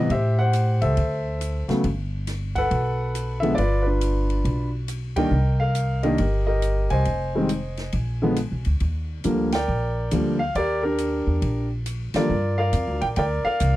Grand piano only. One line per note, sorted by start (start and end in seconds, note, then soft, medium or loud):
0.00 0.10 D#5 medium
0.11 0.94 G4 medium
0.11 0.38 C5 medium
0.11 0.39 E5 medium
0.39 0.81 C5 medium
0.39 0.83 F#5 loud
0.82 1.65 A4 medium
0.82 1.65 C5 medium
0.82 1.64 E5 medium
1.68 1.82 C#3 medium
1.68 1.82 F#3 medium
1.68 1.83 A3 medium
1.68 1.83 B3 medium
2.55 3.40 A4 medium
2.55 3.40 B4 medium
2.55 3.45 F#5 loud
3.40 3.56 D3 medium
3.40 3.56 F3 medium
3.40 3.56 G#3 soft
3.40 3.56 B3 medium
3.40 3.55 E5 medium
3.55 3.85 F4 medium
3.55 3.81 B4 medium
3.55 3.85 D5 medium
3.83 4.69 D4 soft
3.83 4.67 B4 medium
3.87 4.69 F4 soft
5.16 5.30 D#3 medium
5.16 5.30 G3 soft
5.16 5.30 A#3 soft
5.16 5.31 D4 medium
5.16 5.60 A#4 medium
5.16 6.00 D#5 medium
5.16 5.61 G5 medium
5.60 6.03 A#4 medium
5.60 6.05 F5 medium
6.03 6.17 D#3 medium
6.03 6.17 G3 medium
6.03 6.18 A#3 medium
6.03 6.18 D4 medium
6.03 6.46 G4 medium
6.03 6.47 A#4 medium
6.03 6.44 D#5 medium
6.47 7.02 G4 medium
6.47 7.02 A#4 medium
6.47 6.90 D#5 medium
6.90 7.90 C5 medium
6.90 7.90 D#5 medium
6.90 8.61 G#5 medium
7.35 7.48 D#3 medium
7.35 7.49 G3 medium
7.35 7.49 G#3 medium
7.35 7.49 C4 medium
8.22 8.35 D3 medium
8.22 8.36 F3 medium
8.22 8.36 G#3 medium
8.22 8.36 B3 medium
9.24 9.50 D3 medium
9.24 9.50 F3 soft
9.24 9.50 G3 soft
9.24 9.50 A#3 medium
9.53 10.37 A#4 medium
9.53 10.37 D5 medium
9.53 10.42 G5 medium
10.12 10.37 D3 soft
10.12 10.37 F3 soft
10.12 10.37 G3 soft
10.12 10.38 A#3 medium
10.39 10.54 F5 medium
10.56 10.84 G4 medium
10.56 10.81 A#4 medium
10.56 10.82 D5 medium
10.83 11.67 D4 soft
10.83 11.67 G4 soft
10.83 11.66 A#4 medium
12.16 12.29 D3 medium
12.16 12.29 F3 medium
12.16 12.29 G3 medium
12.16 12.29 A#3 medium
12.16 12.98 F4 medium
12.16 12.58 A#4 medium
12.16 12.58 D5 medium
12.58 13.17 A#4 medium
12.58 13.17 D5 medium
12.58 13.03 F5 medium
13.01 13.06 G5 loud
13.17 13.45 A#4 medium
13.17 13.45 D5 medium
13.17 13.23 G5 medium
13.45 13.76 A#4 medium
13.45 13.76 D5 medium
13.45 13.76 F5 loud